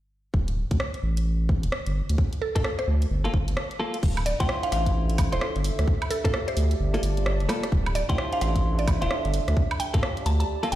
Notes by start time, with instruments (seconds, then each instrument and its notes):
0.34 sub bass D1, kick
0.48 closed hi-hat
0.71 sub bass D2, kick, closed hi-hat
0.80 cross-stick
0.94 closed hi-hat
1.03 sub bass A1
1.17 closed hi-hat
1.49 kick
1.63 sub bass D1, closed hi-hat
1.72 cross-stick
1.86 sub bass G1, closed hi-hat
2.09 sub bass D2, closed hi-hat
2.18 kick
2.33 closed hi-hat
2.42 synth pluck A4
2.55 sub bass G2, clean electric guitar A#3 F4 A4, synth pluck A4, kick, closed hi-hat
2.64 synth pluck A4, cross-stick
2.79 synth pluck C5, cross-stick, closed hi-hat
2.87 sub bass D2
3.02 closed hi-hat
3.10 sub bass G1
3.24 clean electric guitar A#3 F4 A4, closed hi-hat
3.34 sub bass G1, kick
3.48 closed hi-hat
3.57 cross-stick
3.71 closed hi-hat
3.80 clean electric guitar A#3 F4 A4
3.94 closed hi-hat
4.03 sub bass D1, ambient pad D4, kick, crash
4.17 closed hi-hat, high woodblock
4.21 ambient pad A4
4.26 synth pluck D5, open hi-hat
4.40 sub bass D2, clean electric guitar E4 F4 C5, synth pluck G5, kick, closed hi-hat
4.49 cross-stick
4.63 synth pluck F5, closed hi-hat
4.72 sub bass A1, synth pluck F5, cross-stick, open hi-hat
4.76 ambient pad E5
4.86 kick, closed hi-hat
5.10 closed hi-hat
5.18 kick, open hi-hat, high woodblock
5.32 sub bass D1, clean electric guitar E4 F4 C5, synth pluck C5, closed hi-hat
5.41 synth pluck C5, cross-stick
5.56 sub bass G1, closed hi-hat
5.64 ambient pad G4, open hi-hat
5.79 sub bass D2, cross-stick, closed hi-hat
5.88 kick
6.02 ambient pad D5, closed hi-hat, high woodblock
6.10 synth pluck A4, open hi-hat
6.25 sub bass G2, clean electric guitar A#3 F4 A4, synth pluck A4, kick, closed hi-hat
6.34 synth pluck A4, cross-stick
6.48 synth pluck C5, closed hi-hat
6.57 sub bass D2, ambient pad A5, open hi-hat
6.71 closed hi-hat
6.80 sub bass G1
6.94 clean electric guitar A#3 F4 A4, open hi-hat
7.03 sub bass G1, open hi-hat
7.17 closed hi-hat
7.26 cross-stick
7.40 sub bass F1, closed hi-hat
7.49 clean electric guitar A#3 F4 A4, cross-stick, open hi-hat, high woodblock
7.63 cross-stick, closed hi-hat
7.72 sub bass D1, ambient pad D4, kick
7.86 ambient pad A4, closed hi-hat, high woodblock
7.95 synth pluck D5, open hi-hat
8.09 sub bass D2, clean electric guitar E4 F4 C5, synth pluck G5, kick, closed hi-hat
8.18 cross-stick
8.33 ambient pad E5, synth pluck F5, closed hi-hat
8.41 sub bass A1, synth pluck F5, cross-stick, open hi-hat
8.56 kick, closed hi-hat
8.79 synth pluck D5, closed hi-hat
8.87 kick, open hi-hat, high woodblock
9.01 sub bass D1, clean electric guitar E4 F4 C5, synth pluck F5, closed hi-hat
9.11 cross-stick
9.25 sub bass G1, closed hi-hat
9.34 ambient pad G4, open hi-hat
9.48 sub bass D2, ambient pad A5, cross-stick, closed hi-hat
9.57 kick
9.66 ambient pad D5
9.71 closed hi-hat, high woodblock
9.80 synth pluck G5, open hi-hat
9.94 sub bass G2, clean electric guitar A#3 F4 A4, kick, closed hi-hat
10.03 cross-stick
10.17 closed hi-hat
10.26 sub bass D2, synth pluck A5, open hi-hat
10.40 synth pluck A5, closed hi-hat
10.63 clean electric guitar A#3 F4 A4, open hi-hat
10.72 sub bass D1, clean electric guitar F4 A4, synth pluck G5, open hi-hat